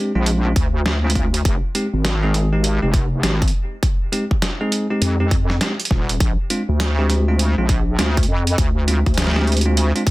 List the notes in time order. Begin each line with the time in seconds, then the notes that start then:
Already playing: G#3 C4 D4 G4
0.15 A#1 G#3 C4 D4 F4
0.26 closed hi-hat
0.45 G#3 C4 D4 F4
0.56 D2, kick, closed hi-hat
0.86 snare
1.04 G#3 C4 D4 F4
1.10 closed hi-hat
1.15 G#3 C4 D4 F4, kick, closed hi-hat
1.34 closed hi-hat
1.45 F1, kick, closed hi-hat
1.75 G#3 C4 D#4 G4, closed hi-hat
1.93 G#1
2.05 snare, closed hi-hat
2.23 G#3 C4 D#4 G#4
2.34 snare, closed hi-hat
2.53 G#3 C4 D#4 G4
2.64 closed hi-hat
2.82 F1 G#3 C4 D#4 G4
2.94 kick, closed hi-hat
3.23 G#1 G#3 C4 D#4 G4, snare, closed hi-hat
3.42 kick, closed hi-hat
3.48 closed hi-hat
3.83 kick, closed hi-hat
4.12 G#3 C4 D#4 G4, closed hi-hat
4.31 kick
4.42 snare, closed hi-hat
4.61 G#3 C4 D#4 G#4
4.72 closed hi-hat
4.90 G#3 C4 D#4 G4
5.01 F2, closed hi-hat
5.20 G#3 C4 D#4 G4
5.31 kick, closed hi-hat
5.50 snare
5.61 G#3 C4 D#4 G4, snare, closed hi-hat
5.80 closed hi-hat
5.85 closed hi-hat
5.91 D#1, kick, snare
6.09 closed hi-hat
6.20 A#1, kick, closed hi-hat
6.50 G#3 C4 D4 F4, closed hi-hat
6.69 D2
6.80 snare, closed hi-hat
6.99 G#3 C4 D4 G4
7.10 snare, closed hi-hat
7.28 G#3 C4 D4 F4
7.39 closed hi-hat
7.58 A#1 G#3 C4 D4 F4
7.69 kick, closed hi-hat
7.98 D2 G#3 C4 D4 F4, snare, closed hi-hat
8.17 kick, closed hi-hat
8.23 closed hi-hat
8.28 F2
8.47 closed hi-hat
8.58 D2, kick, closed hi-hat
8.88 G#3 C4 D4 F4, closed hi-hat
9.06 D2, kick, closed hi-hat
9.14 snare, closed hi-hat
9.18 closed hi-hat
9.22 snare, closed hi-hat
9.27 snare
9.31 snare
9.36 G#3 C4 D4 G4, snare
9.39 snare
9.42 snare
9.45 snare, closed hi-hat
9.52 closed hi-hat
9.57 closed hi-hat
9.61 closed hi-hat
9.66 G#3 C4 D4 F4
9.77 closed hi-hat
9.95 G#3 C4 D4 F4, closed hi-hat
10.07 kick, closed hi-hat